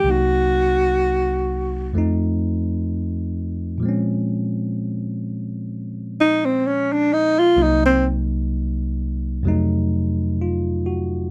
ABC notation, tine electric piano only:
X:1
M:4/4
L:1/8
Q:"Swing" 1/4=64
K:Bbm
V:1 name="Tine electric piano"
z8 | z8 | z6 F G |]
V:2 name="Tine electric piano" clef=bass
[C,,C,G,B,E]4 [F,,F,=A,CE]4 | [B,,F,A,CD]8 | [C,,C,G,B,E]4 [F,,C,G,=A,E]4 |]